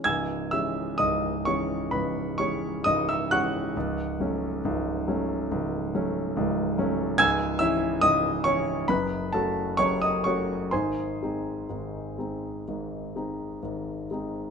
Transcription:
<<
  \new Staff \with { instrumentName = "Grand piano" } { \time 4/4 \key cis \minor \tempo 4 = 66 <gis'' e''' gis'''>8 <e'' e'''>8 <dis'' dis'''>8 <cis'' cis'''>8 <b' b''>8 <cis'' cis'''>8 <dis'' dis'''>16 <e'' e'''>16 <fis'' cis''' fis'''>8~ | <fis'' cis''' fis'''>2.~ <fis'' cis''' fis'''>8 r8 | <gis'' e''' gis'''>8 <e'' e'''>8 <dis'' dis'''>8 <cis'' cis'''>8 <b' b''>8 <a' a''>8 <cis'' cis'''>16 <dis'' dis'''>16 <cis'' cis'''>8 | <bis' gis'' bis''>2.~ <bis' gis'' bis''>8 r8 | }
  \new Staff \with { instrumentName = "Grand piano" } { \clef bass \time 4/4 \key cis \minor <cis,, cis,>8 <e gis cis'>8 <cis,, cis,>8 <e gis cis'>8 <cis,, cis,>8 <e gis cis'>8 <cis,, cis,>8 <e gis cis'>8 | <cis,, cis,>8 <fis a cis'>8 <cis,, cis,>8 <fis a cis'>8 <cis,, cis,>8 <fis a cis'>8 <cis,, cis,>8 <fis a cis'>8 | <cis,, cis,>8 <e cis' e'>8 <cis,, cis,>8 <e cis' e'>8 <fis,, fis,>8 <a cis' fis'>8 <fis,, fis,>8 <a cis' fis'>8 | <gis,, gis,>8 <gis bis dis'>8 <gis,, gis,>8 <gis bis dis'>8 <gis,, gis,>8 <gis bis dis'>8 <gis,, gis,>8 <gis bis dis'>8 | }
>>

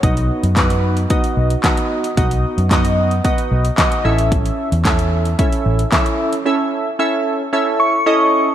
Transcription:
<<
  \new Staff \with { instrumentName = "Soft synth lead" } { \time 4/4 \key a \lydian \tempo 4 = 112 r1 | r1 | r1 | r2 r8 cis'''4. | }
  \new Staff \with { instrumentName = "Synth keys" } { \time 4/4 \key a \lydian <b dis' fis' dis''>4 <b dis' fis' b'>4 <b dis' fis' dis''>4 <b dis' fis' dis''>4 | <b dis' fis' dis''>4 <b dis' fis' dis''>4 <b dis' fis' dis''>4 <b dis' fis' dis''>8 <cis' e' a' e''>8~ | <cis' e' a' e''>8 r8 <cis' e' a' e''>4 <cis' e' a' e''>4 <cis' e' a' e''>4 | <cis' e' a' e''>4 <cis' e' a' e''>4 <cis' e' a' e''>4 <cis' e' a' dis''>4 | }
  \new Staff \with { instrumentName = "Fingered electric bass" } { \clef bass \time 4/4 \key a \lydian b,,8. fis,4.~ fis,16 b,,8 r4 | b,,8. fis,4.~ fis,16 b,,8 r8 a,,8~ | a,,8. e,4.~ e,16 a,,8 r4 | r1 | }
  \new DrumStaff \with { instrumentName = "Drums" } \drummode { \time 4/4 <hh bd>16 hh8 hh16 <hc hh bd sn>16 hh8 hh16 <hh bd>16 hh8 hh16 <hc hh bd sn>16 hh8 hh16 | <hh bd>16 hh8 hh16 <hc hh bd sn>16 hh8 hh16 <hh bd>16 hh8 hh16 <hc hh bd sn>16 hh8 hh16 | <hh bd>16 hh8 hh16 <hc hh bd sn>16 hh8 hh16 <hh bd>16 hh8 hh16 <hc hh bd sn>16 hh8 hh16 | r4 r4 r4 r4 | }
>>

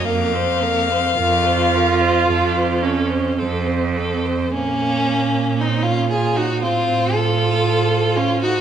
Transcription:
<<
  \new Staff \with { instrumentName = "Violin" } { \time 4/4 \key bes \minor \tempo 4 = 55 f''2. r4 | f''4 des''4 c''4 c''4 | }
  \new Staff \with { instrumentName = "Violin" } { \time 4/4 \key bes \minor bes'16 c''16 bes'16 c''16 bes'16 c''16 bes'16 c''16 a'16 c''16 a'16 c''16 a'16 c''16 a'16 c''16 | des'4 ees'16 f'16 aes'16 ges'16 f'8 a'4 f'16 ges'16 | }
  \new Staff \with { instrumentName = "Viola" } { \time 4/4 \key bes \minor bes16 c'16 bes16 c'16 f'4. des'8 c'4 | bes4 c'16 des'16 f'16 ees'16 c'8 f'4 des'16 ees'16 | }
  \new Staff \with { instrumentName = "Cello" } { \clef bass \time 4/4 \key bes \minor f,4 f,4 f,4 f,4 | bes,2 a,2 | }
>>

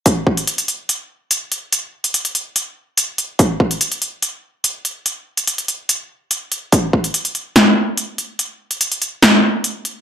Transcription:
\new DrumStaff \with { instrumentName = "Drums" } \drummode { \time 4/4 \tempo 4 = 144 <hh bd>8 bd16 hh16 hh16 hh16 hh8 hh4 hh8 hh8 | hh8. hh16 hh16 hh16 hh8 hh4 hh8 hh8 | <hh bd>8 bd16 hh16 hh16 hh16 hh8 hh4 hh8 hh8 | hh8. hh16 hh16 hh16 hh8 hh4 hh8 hh8 |
<hh bd>8 bd16 hh16 hh16 hh16 hh8 <hh sn>4 hh8 hh8 | hh8. hh16 hh16 hh16 hh8 <hh sn>4 hh8 hh8 | }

